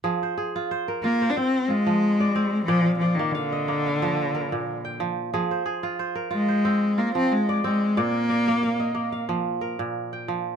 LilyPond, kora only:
<<
  \new Staff \with { instrumentName = "Kora" } { \time 4/4 \key f \dorian \tempo 4 = 91 aes'16 c''16 aes'8 c''16 bes'8 c''8. f'8. d''8. | d''16 f''16 d''8 f''16 ees''8 f''8. bes'8. g''8. | aes'16 c''16 aes'8 c''16 bes'8 c''8. f'8. d''8. | d''8 d''8 f''16 ees''8 f''8. bes'8. g''8. | }
  \new Staff \with { instrumentName = "Kora" } { \clef bass \time 4/4 \key f \dorian f8 r16 f'8 r16 f'8 c'8 r16 f8 r16 c'8 | bes,8 r16 bes8 r16 bes8 f8 r16 bes,8 r16 f8 | f8 r16 f'8 r16 f'8 c'8 r16 f8 r16 c'8 | bes,8 r16 bes8 r16 bes8 f8 r16 bes,8 r16 f8 | }
>>